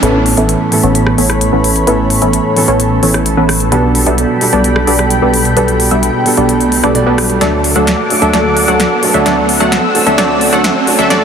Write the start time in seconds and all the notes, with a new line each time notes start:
0.02 A1 A2 E3 B3 C#4 A4 B4 C#5 B5, closed hi-hat, riser
0.26 open hi-hat
0.37 A1 E3 B3 C#4 A4 E5, closed hi-hat
0.49 closed hi-hat
0.71 A2 E3 B3 C#4 A4, open hi-hat
0.83 A1 E3 B3 C#4 A4 C#5, closed hi-hat
0.95 closed hi-hat
1.07 cross-stick
1.18 A1 E3 B3 C#4 A4 C#5, open hi-hat
1.30 cross-stick, closed hi-hat
1.41 closed hi-hat
1.53 A1 E3 B3 C#4 A4 B4
1.64 open hi-hat
1.76 closed hi-hat
1.86 A1 A2 E3 B3 C#4 A4 B4, closed hi-hat
2.10 open hi-hat
2.22 A1 E3 B3 C#4 A4 E5, closed hi-hat
2.33 closed hi-hat
2.55 A2 E3 B3 C#4 A4, open hi-hat
2.68 A1 E3 B3 C#4 A4 C#5, closed hi-hat
2.80 closed hi-hat
3.03 A1 E3 B3 C#4 A4 C#5, open hi-hat
3.14 cross-stick, closed hi-hat
3.26 closed hi-hat
3.37 A1 E3 B3 C#4 A4 B4
3.49 cross-stick, open hi-hat
3.60 closed hi-hat
3.71 B1 B2 G3 B3 D4 A4 B4 G5 B5, closed hi-hat
3.95 open hi-hat
4.06 B1 G3 B3 D4 A4 E5, closed hi-hat
4.18 closed hi-hat
4.40 B2 G3 B3 D4 A4, open hi-hat
4.53 B1 G3 B3 D4 A4 D5, closed hi-hat
4.64 closed hi-hat
4.76 cross-stick
4.87 B1 G3 B3 D4 A4 D5, open hi-hat
4.99 cross-stick, closed hi-hat
5.10 closed hi-hat
5.22 B1 G3 B3 D4 A4 B4
5.34 open hi-hat
5.45 closed hi-hat
5.56 B1 B2 G3 B3 D4 A4 B4, closed hi-hat
5.68 closed hi-hat
5.80 open hi-hat
5.91 B1 G3 B3 D4 A4 E5, closed hi-hat
6.03 closed hi-hat
6.25 B2 G3 B3 D4 A4, open hi-hat
6.37 B1 G3 B3 D4 A4 D5, closed hi-hat
6.49 closed hi-hat
6.61 closed hi-hat
6.72 open hi-hat
6.84 B1 G3 B3 D4 A4 D5, cross-stick, closed hi-hat
6.95 B2 G3 B3 D4 D5, closed hi-hat
7.07 B1 G3 B3 D4 A4 B4
7.18 cross-stick, open hi-hat
7.30 closed hi-hat
7.40 D2 F#3 A3 D4 A4 D5 F#5 D6, snare, closed hi-hat
7.64 open hi-hat
7.76 D2 F#3 A3 D4 A4 F#5, closed hi-hat
7.87 snare, closed hi-hat
8.09 F#3 A3 D4 A4, open hi-hat
8.22 D2 F#3 A3 D4 A4 E5, closed hi-hat
8.32 D2 F#3 A3 D4 A4 D5, snare, closed hi-hat
8.57 open hi-hat
8.68 D2 F#3 A3 D4 A4 F#5, closed hi-hat
8.80 snare, closed hi-hat
9.02 F#3 A3 D4 A4, open hi-hat
9.14 D2 F#3 A3 D4 A4 E5, closed hi-hat
9.25 D2 F#3 A3 D4 A4 D5 E6, snare, closed hi-hat
9.49 open hi-hat
9.60 D2 F#3 A3 D4 A4 F#5, closed hi-hat
9.72 snare, closed hi-hat
9.94 F#3 A3 D4 A4, open hi-hat
10.07 D2 F#3 A3 D4 A4 E5, closed hi-hat
10.17 D2 F#3 A3 D4 A4 D5, snare, closed hi-hat
10.41 open hi-hat
10.53 D2 F#3 A3 D4 A4 F#5, closed hi-hat
10.64 snare, closed hi-hat
10.86 F#3 A3 D4 A4, open hi-hat
10.99 D2 F#3 A3 D4 A4 E5, closed hi-hat
11.09 E2 F#3 A3 D4 A4 D5 E5 G5 B5, snare, closed hi-hat